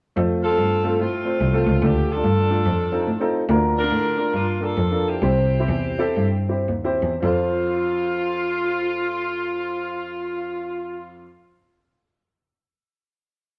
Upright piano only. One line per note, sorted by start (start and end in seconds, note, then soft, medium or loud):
0.16 0.42 A3 medium
0.16 0.42 C4 medium
0.16 0.43 F4 medium
0.16 0.43 A4 medium
0.50 0.71 A3 medium
0.50 0.71 C4 soft
0.50 0.71 F4 soft
0.50 0.71 A4 medium
0.84 1.08 A3 medium
0.84 1.08 C4 medium
0.84 1.08 F4 medium
0.84 1.09 A4 medium
1.25 1.41 A3 medium
1.25 1.41 C4 soft
1.25 1.41 F4 soft
1.25 1.41 C5 medium
1.53 1.74 A3 medium
1.53 1.75 C4 medium
1.53 1.75 F4 medium
1.53 1.75 A4 medium
1.82 2.46 D3 medium
1.82 2.08 A3 medium
1.82 2.09 D4 medium
1.82 2.09 F4 medium
1.82 2.09 A4 medium
2.16 2.37 A3 soft
2.16 2.37 D4 medium
2.16 2.37 F4 soft
2.16 2.38 A4 medium
2.50 2.66 A3 medium
2.50 2.66 D4 medium
2.50 2.66 F4 medium
2.50 2.66 A4 medium
2.92 3.07 C4 medium
2.92 3.08 D#4 medium
2.92 3.08 F4 medium
2.92 3.08 A4 medium
3.20 3.41 C4 medium
3.20 3.41 D#4 medium
3.20 3.42 F4 medium
3.20 3.42 A4 medium
3.49 4.14 D3 medium
3.49 3.75 A#3 medium
3.49 3.76 D4 medium
3.49 3.76 F4 medium
3.49 3.76 A#4 medium
3.83 4.04 A#3 medium
3.83 4.04 D4 medium
3.83 4.05 F4 medium
3.83 4.05 A#4 medium
4.17 4.43 A#3 medium
4.17 4.43 D4 medium
4.17 4.43 F4 medium
4.17 4.43 A#4 medium
4.61 4.77 A#3 medium
4.61 4.77 D4 medium
4.61 4.77 F4 soft
4.61 4.78 A4 medium
4.91 5.14 A#3 medium
4.91 5.14 D4 medium
4.91 5.14 F4 medium
4.91 5.14 A4 medium
5.22 5.95 C3 medium
5.22 5.51 C4 medium
5.22 5.51 E4 medium
5.22 5.51 G4 medium
5.22 5.52 C5 medium
5.59 5.83 C4 medium
5.59 5.84 E4 medium
5.59 5.84 G4 medium
5.59 5.84 C5 medium
5.98 6.27 C4 medium
5.98 6.28 E4 medium
5.98 6.28 G4 medium
5.98 6.28 A4 medium
6.48 6.68 C4 medium
6.48 6.68 E4 medium
6.48 6.68 G4 medium
6.48 6.69 C5 medium
6.84 7.12 C4 medium
6.84 7.12 E4 medium
6.84 7.12 G4 medium
6.84 7.12 C5 medium
7.20 11.24 F2 medium
7.20 11.22 C4 medium
7.20 11.24 F4 medium
7.20 11.25 A4 medium
7.25 11.26 C5 medium